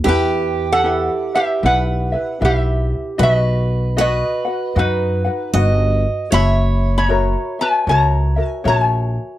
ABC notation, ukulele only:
X:1
M:4/4
L:1/8
Q:"Swing" 1/4=77
K:Em
V:1 name="Ukulele"
[EGBe]2 [EGBe] [EBe] [EGBe] [EBe] [EGBe]2 | [FB^df]2 [FBdf] [FBf] [FBdf] [FBf] [FBdf]2 | [F^ce]2 [F^Ace] [Fe] [FAce] [FAe] [FAce]2 |]